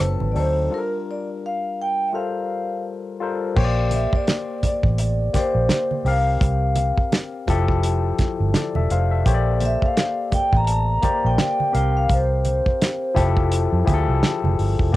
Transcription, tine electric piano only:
0.00 0.29 F#3 medium
0.00 0.29 C4 medium
0.00 0.30 D#4 medium
0.00 0.30 A4 medium
0.34 0.61 F#3 medium
0.34 0.62 C4 medium
0.34 0.62 D#4 medium
0.34 0.62 A4 medium
0.69 1.69 G3 medium
0.69 1.70 D4 medium
0.69 1.70 F4 medium
0.69 0.79 A4 medium
0.78 1.74 A#4 medium
2.13 2.87 G3 medium
2.13 2.87 F4 medium
2.13 2.87 A4 medium
2.13 2.88 A#4 medium
2.13 2.88 C5 medium
3.20 3.47 G3 medium
3.20 3.47 F4 medium
3.20 3.47 A4 medium
3.20 3.48 A#4 medium
3.20 3.48 C5 medium
3.56 4.55 A#3 medium
3.56 4.55 G4 medium
3.56 4.56 C5 medium
3.56 3.65 C#5 medium
3.65 4.59 D5 medium
5.34 6.05 A#3 medium
5.34 6.05 G4 medium
5.34 6.06 C5 medium
5.34 6.06 D5 medium
6.05 7.20 C4 medium
6.05 7.21 G4 medium
6.05 7.21 A#4 medium
6.05 7.22 F5 medium
7.47 8.07 F3 loud
7.47 8.07 E4 medium
7.47 8.08 G4 medium
7.47 8.08 A4 loud
8.55 8.75 A4 soft
8.55 8.74 D5 medium
8.76 8.90 A4 medium
8.76 8.90 E5 medium
8.91 9.10 C5 medium
8.91 9.10 F5 medium
9.11 9.45 A4 medium
9.11 9.45 E5 medium
9.25 10.24 A#3 medium
9.25 10.24 G4 medium
9.25 10.25 C5 medium
9.25 9.34 C#5 medium
9.34 10.29 D5 medium
11.02 11.74 A#3 medium
11.02 11.72 G4 medium
11.02 11.75 C5 medium
11.02 11.75 D5 medium
11.72 12.88 C4 medium
11.72 12.89 G4 medium
11.72 12.89 A#4 medium
11.72 12.89 F5 medium
13.14 13.75 F3 loud
13.14 13.75 E4 medium
13.14 13.75 G4 medium
13.14 13.76 A4 loud
13.85 14.59 F3 medium
13.85 14.60 E4 medium
13.85 14.60 G4 medium
13.85 13.95 G#4 medium
13.94 14.64 A4 loud
14.92 14.96 A#3 medium

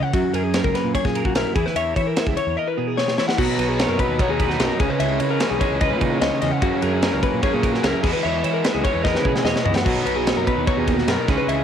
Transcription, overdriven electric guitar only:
3.37 4.16 B2 medium
3.37 4.17 F#3 loud
3.37 4.19 B3 loud
3.37 4.20 D#4 medium
4.18 4.78 B2 medium
4.18 4.78 F#3 medium
4.18 4.79 B3 medium
4.18 4.79 D#4 medium
4.79 5.59 C#3 loud
4.79 5.61 E3 loud
4.79 5.60 G#3 loud
4.79 5.59 C#4 loud
5.60 6.41 C#3 medium
5.60 6.62 E3 medium
5.60 6.62 G#3 medium
5.60 6.63 C#4 loud
6.61 7.40 F#2 medium
6.61 7.41 C#3 medium
6.61 7.43 E3 loud
6.61 7.42 A#3 medium
6.61 7.44 C#4 loud
7.41 8.01 F#2 medium
7.41 8.02 C#3 medium
7.41 8.01 E3 medium
7.41 8.03 A#3 medium
7.41 8.05 C#4 loud
8.02 8.83 E3 medium
8.02 8.83 G#3 loud
8.02 8.84 B3 loud
8.02 8.82 E4 loud
8.84 9.65 E3 medium
8.84 9.65 G#3 medium
8.84 9.86 B3 medium
8.84 9.64 E4 medium
9.84 10.65 B2 medium
9.84 10.66 F#3 loud
9.84 10.68 B3 medium
9.84 10.69 D#4 medium
10.66 11.26 B2 medium
10.66 11.27 F#3 loud
10.66 11.27 B3 loud
10.66 11.28 D#4 medium
11.27 11.64 C#3 loud
11.27 11.64 E3 loud
11.27 11.64 G#3 loud
11.27 11.64 C#4 loud

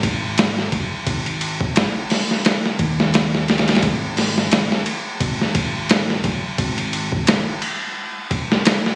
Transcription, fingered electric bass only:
0.00 0.69 G#1 medium
0.72 0.89 F#1 medium
1.07 1.73 G#1 medium
1.76 1.93 G#1 loud
2.79 3.80 D#2 medium
3.83 4.49 G#1 loud
4.52 4.69 G#1 loud
5.21 6.21 G#1 loud
6.24 6.41 F#1 medium
6.59 7.25 G#1 medium
7.27 7.44 G#1 loud

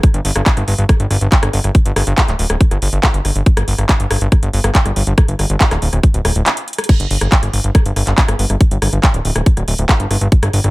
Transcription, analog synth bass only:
0.14 0.20 G1 medium
0.25 0.31 G1 loud
0.36 0.42 G1 loud
0.57 0.63 G1 medium
0.68 0.74 G1 loud
0.78 0.84 G1 loud
1.00 1.06 G1 medium
1.11 1.17 G1 loud
1.21 1.27 G1 loud
1.43 1.49 G1 medium
1.53 1.59 G1 loud
1.64 1.70 G1 loud
1.86 1.92 G1 medium
1.96 2.02 G1 loud
2.07 2.13 G1 medium
2.28 2.34 D1 medium
2.39 2.45 D1 loud
2.50 2.56 D1 medium
2.71 2.77 G1 medium
2.82 2.88 G1 loud
2.93 2.99 G1 loud
3.14 3.20 G1 medium
3.25 3.31 G1 loud
3.36 3.42 G1 loud
3.57 3.63 G1 medium
3.68 3.74 G1 loud
3.78 3.84 G1 medium
4.00 4.06 G1 medium
4.11 4.17 G1 loud
4.21 4.27 G1 loud
4.43 4.49 G1 medium
4.53 4.59 G1 loud
4.64 4.70 G1 medium
4.86 4.92 G1 medium
4.96 5.02 G1 loud
5.07 5.13 G1 loud
5.28 5.34 G1 medium
5.39 5.45 G1 loud
5.50 5.56 G1 loud
5.71 5.77 D1 medium
5.82 5.88 D1 loud
5.93 5.99 D1 loud
6.14 6.20 D1 medium
6.25 6.31 D1 loud
6.36 6.42 D1 loud
7.00 7.06 G1 medium
7.11 7.17 G1 loud
7.21 7.27 G1 medium
7.43 7.49 G1 medium
7.53 7.59 G1 loud
7.64 7.70 G1 medium
7.86 7.92 G1 medium
7.96 8.02 G1 loud
8.07 8.13 G1 medium
8.28 8.34 G1 medium
8.39 8.45 G1 loud
8.50 8.56 G1 medium
8.71 8.77 G1 medium
8.82 8.88 G1 loud
8.93 8.99 G1 medium
9.14 9.20 D1 medium
9.25 9.31 D1 loud
9.36 9.42 D1 medium
9.57 9.63 D1 medium
9.68 9.74 D1 loud
9.78 9.84 D1 loud
10.00 10.06 G1 medium
10.11 10.17 G1 loud
10.21 10.27 G1 loud
10.43 10.49 G1 medium
10.53 10.59 G1 loud
10.64 10.70 G1 loud

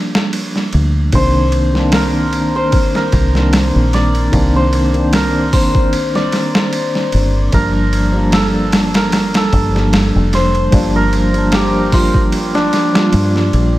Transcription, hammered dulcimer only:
1.15 2.55 C5 medium
1.94 2.96 A#4 medium
2.56 4.56 C5 medium
2.96 5.13 A#4 medium
3.94 6.15 D5 medium
4.56 5.53 C5 medium
5.14 7.53 A#4 medium
5.53 8.17 C5 medium
6.16 8.62 D5 medium
7.54 8.40 A#4 medium
8.34 9.02 A4 medium
8.96 9.43 A#4 medium
9.37 11.02 A4 medium
10.35 12.98 C5 medium
10.96 13.79 A#4 medium
11.55 13.79 G4 medium
11.93 13.79 F4 medium
12.55 13.79 D4 medium

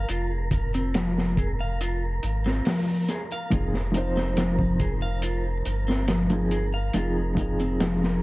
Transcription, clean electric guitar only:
0.10 0.31 F4 medium
0.75 0.94 C4 medium
0.95 1.36 F3 medium
1.38 1.51 G#4 medium
1.61 1.79 F5 medium
1.81 2.02 F4 medium
2.46 2.65 C4 medium
2.66 3.07 F3 medium
3.10 3.22 G#4 medium
3.32 3.50 F5 medium
3.52 3.73 F4 medium
4.17 4.37 C4 medium
4.37 4.78 F3 medium
4.80 4.93 G#4 medium
5.02 5.21 F5 medium
5.23 5.44 F4 medium
5.88 6.08 C4 medium
6.08 6.50 F3 medium
6.52 6.65 G#4 medium
6.74 6.93 F5 medium
6.95 7.16 F4 medium
7.60 7.80 C4 medium
7.81 8.21 F3 medium

